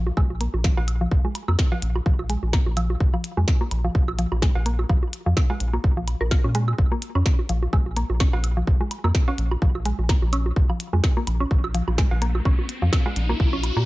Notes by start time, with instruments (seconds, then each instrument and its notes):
Already playing: analog synth bass A#1
0.07 low bongo
0.17 analog synth bass A#1, synth arpeggio sound G#3, kick, high woodblock
0.30 low bongo
0.41 synth arpeggio sound A#3, closed hi-hat
0.54 analog synth bass A#1, low bongo
0.64 synth arpeggio sound F3, kick, snare
0.77 analog synth bass A#1, cowbell, low bongo, high woodblock
0.88 closed hi-hat, high woodblock
1.01 synth arpeggio sound F3, low bongo
1.11 analog synth bass A#1, kick
1.25 synth arpeggio sound G#3, low bongo
1.35 closed hi-hat, high woodblock
1.48 analog synth bass F2, synth arpeggio sound A#3, low bongo, high woodblock
1.59 kick, snare
1.72 synth arpeggio sound F3, cowbell, low bongo
1.82 analog synth bass A#1, closed hi-hat
1.96 low bongo, high woodblock
2.06 analog synth bass A#1, synth arpeggio sound F3, kick
2.19 low bongo, high woodblock
2.30 synth arpeggio sound G#3, closed hi-hat
2.43 analog synth bass A#1, low bongo
2.53 synth arpeggio sound A#3, kick, snare, high woodblock
2.66 analog synth bass A#1, low bongo
2.77 synth arpeggio sound F3, closed hi-hat, high woodblock
2.90 low bongo
3.00 analog synth bass A#1, kick
3.14 synth arpeggio sound F3, low bongo, high woodblock
3.24 closed hi-hat
3.37 analog synth bass F2, synth arpeggio sound G#3, low bongo
3.48 kick, snare, high woodblock
3.61 synth arpeggio sound A#3, low bongo
3.71 analog synth bass A#1, closed hi-hat, high woodblock
3.84 synth arpeggio sound F3, low bongo
3.95 analog synth bass A#1, kick
4.08 low bongo, high woodblock
4.19 synth arpeggio sound F3, closed hi-hat
4.32 analog synth bass A#1, low bongo, high woodblock
4.42 synth arpeggio sound G#3, kick, snare
4.55 analog synth bass A#1, cowbell, low bongo
4.66 synth arpeggio sound A#3, closed hi-hat
4.79 low bongo, high woodblock
4.89 analog synth bass A#1, synth arpeggio sound F3, kick, high woodblock
5.03 low bongo
5.13 closed hi-hat
5.26 analog synth bass F2, synth arpeggio sound F3, low bongo
5.37 kick, snare, high woodblock
5.50 synth arpeggio sound G#3, cowbell, low bongo, high woodblock
5.60 analog synth bass A#1, closed hi-hat
5.73 synth arpeggio sound A#3, low bongo
5.84 analog synth bass A#1, kick
5.97 synth arpeggio sound F3, low bongo
6.08 closed hi-hat, high woodblock
6.21 analog synth bass A#1, synth arpeggio sound A#4, low bongo
6.31 synth arpeggio sound F4, kick, snare
6.44 analog synth bass A#2, synth arpeggio sound C#4, low bongo
6.55 synth arpeggio sound G#3, closed hi-hat
6.68 low bongo, high woodblock
6.78 analog synth bass A#1, kick
6.92 synth arpeggio sound A#3, low bongo
7.02 closed hi-hat
7.15 analog synth bass F2, synth arpeggio sound C#4, low bongo, high woodblock
7.26 kick, snare
7.39 low bongo
7.49 analog synth bass A#1, synth arpeggio sound F3, closed hi-hat
7.63 low bongo
7.73 analog synth bass A#1, synth arpeggio sound G#3, kick, high woodblock
7.86 low bongo
7.97 synth arpeggio sound A#3, closed hi-hat
8.10 analog synth bass A#1, low bongo
8.20 synth arpeggio sound C#4, kick, snare
8.33 analog synth bass A#1, cowbell, low bongo, high woodblock
8.44 closed hi-hat, high woodblock
8.57 synth arpeggio sound F3, low bongo
8.67 analog synth bass A#1, kick
8.81 synth arpeggio sound G#3, low bongo
8.91 closed hi-hat, high woodblock
9.04 analog synth bass F2, synth arpeggio sound A#3, low bongo, high woodblock
9.15 kick, snare
9.28 synth arpeggio sound C#4, cowbell, low bongo
9.38 analog synth bass A#1, closed hi-hat
9.51 low bongo, high woodblock
9.62 analog synth bass A#1, synth arpeggio sound F3, kick
9.75 low bongo, high woodblock
9.86 synth arpeggio sound G#3, closed hi-hat
9.99 analog synth bass A#1, low bongo
10.09 synth arpeggio sound A#3, kick, snare, high woodblock
10.22 analog synth bass A#1, low bongo
10.33 synth arpeggio sound C#4, closed hi-hat, high woodblock
10.46 low bongo
10.56 analog synth bass A#1, kick, riser
10.70 synth arpeggio sound F3, low bongo, high woodblock
10.80 closed hi-hat
10.93 analog synth bass F2, synth arpeggio sound G#3, low bongo
11.04 kick, snare, high woodblock
11.17 synth arpeggio sound A#3, low bongo
11.27 analog synth bass A#1, closed hi-hat, high woodblock
11.40 synth arpeggio sound C#4, low bongo
11.51 analog synth bass A#1, kick
11.64 low bongo, high woodblock
11.75 synth arpeggio sound F3, closed hi-hat
11.88 analog synth bass A#1, low bongo, high woodblock
11.98 synth arpeggio sound G#3, kick, snare
12.11 analog synth bass A#1, cowbell, low bongo
12.22 synth arpeggio sound A#3, closed hi-hat
12.35 low bongo, high woodblock
12.45 analog synth bass A#1, synth arpeggio sound C#4, kick, high woodblock
12.59 low bongo
12.69 closed hi-hat
12.82 analog synth bass F2, synth arpeggio sound F3, low bongo
12.93 kick, snare, high woodblock
13.06 synth arpeggio sound G#3, cowbell, low bongo, high woodblock
13.16 analog synth bass A#1, closed hi-hat
13.29 synth arpeggio sound A#3, low bongo
13.40 analog synth bass A#1, kick
13.53 synth arpeggio sound C#4, low bongo
13.64 closed hi-hat, high woodblock
13.77 analog synth bass A#2, synth arpeggio sound A#3, low bongo